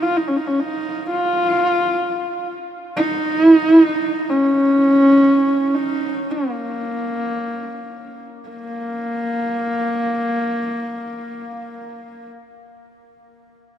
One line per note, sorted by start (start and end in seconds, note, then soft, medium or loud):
0.02 0.18 F4 medium
0.17 0.29 D#4 medium
0.28 0.38 C#4 medium
0.36 0.49 D#4 medium
0.47 0.61 C#4 medium
0.60 1.10 D#4 medium
1.11 2.55 F4 medium
2.97 3.43 D#4 loud
3.43 3.55 E4 loud
3.55 3.68 D#4 loud
3.68 3.81 E4 loud
3.81 4.32 D#4 loud
4.30 5.76 C#4 medium
5.75 6.32 D#4 medium
6.31 8.26 A#3 medium
8.49 12.29 A#3 medium